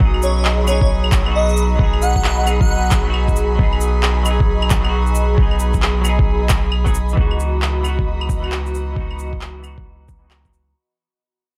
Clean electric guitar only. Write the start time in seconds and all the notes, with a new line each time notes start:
Already playing: F#3
0.00 B3 D#4
0.05 G#4
0.64 F#3 B3
0.70 D#4 G#4
1.23 F#3 B3
1.28 D#4 F#4
1.75 F#3 B3
1.81 D#4 G#4
2.43 F#3 B3
2.48 D#4 G#4
3.02 F#3 B3
3.07 D#4 F#4
3.55 F#3 B3
3.61 D#4 G#4
4.23 F#3 B3
4.28 D#4 G#4
4.81 F#3 B3
4.86 D#4 F#4
5.35 F#3 B3
5.40 D#4 G#4
6.01 F#3 B3
6.06 D#4 G#4
6.84 F#3 B3 D#4 G#4
7.13 E3 B3
7.18 D#4 F#4
7.81 E3 B3
7.86 D#4 F#4
8.40 E3 B3
8.45 D#4 F#4
8.92 E3 B3
8.98 D#4 F#4
9.59 E3 B3
9.64 D#4 F#4
10.19 E3 B3
10.24 D#4 F#4